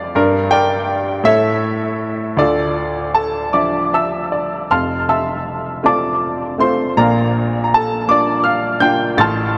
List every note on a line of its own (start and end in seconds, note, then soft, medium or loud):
0.00 0.15 F2 medium
0.00 0.11 D5 medium
0.00 0.15 F5 medium
0.15 1.21 G2 medium
0.15 1.21 D4 medium
0.15 0.51 A#4 medium
0.51 1.20 A#4 medium
0.51 1.21 D5 medium
0.51 1.20 G5 loud
1.23 2.33 A2 medium
1.23 2.34 A4 medium
1.23 2.34 C#5 medium
1.23 2.40 E5 loud
2.37 4.67 D2 medium
2.37 3.91 F4 medium
2.37 3.13 A4 medium
2.37 3.53 D5 medium
3.14 3.51 A4 soft
3.14 3.55 A5 medium
3.53 4.67 F3 soft
3.53 4.67 D4 soft
3.53 3.91 D5 medium
3.53 3.92 E5 soft
3.53 3.94 D6 medium
3.94 4.67 E5 medium
3.94 4.67 A5 medium
3.94 4.67 E6 medium
4.32 4.68 D5 medium
4.71 6.93 F1 medium
4.71 6.93 F2 soft
4.71 5.06 F5 medium
4.71 5.06 A5 soft
4.71 5.06 C6 medium
4.71 5.10 F6 medium
5.09 5.80 E5 soft
5.09 5.80 A5 medium
5.09 5.86 E6 medium
5.83 6.56 A3 soft
5.83 6.56 C4 soft
5.83 6.57 F4 soft
5.83 6.56 D5 medium
5.83 6.56 A5 medium
5.83 6.62 D6 medium
6.58 6.95 A3 soft
6.58 6.96 C4 soft
6.58 6.96 F4 medium
6.58 6.95 C5 medium
6.58 6.99 C6 medium
6.97 9.15 A#1 medium
6.97 9.15 A#2 medium
6.97 7.62 A#4 medium
6.97 7.62 D5 medium
6.97 7.62 F5 medium
6.97 7.63 A#5 medium
7.64 7.71 A#5 medium
7.74 8.08 A4 medium
7.74 8.10 A5 medium
8.08 8.79 A#3 soft
8.08 8.79 D4 soft
8.08 8.79 F4 medium
8.08 8.44 D5 medium
8.08 8.46 D6 medium
8.44 8.79 F5 medium
8.44 8.78 F6 medium
8.80 9.17 A#3 medium
8.80 9.17 D4 soft
8.80 9.17 F4 medium
8.80 9.16 G5 medium
8.80 9.19 G6 loud
9.17 9.58 A1 medium
9.17 9.58 A2 medium
9.17 9.58 A5 medium
9.17 9.58 C6 medium
9.17 9.58 F6 medium
9.17 9.58 A6 loud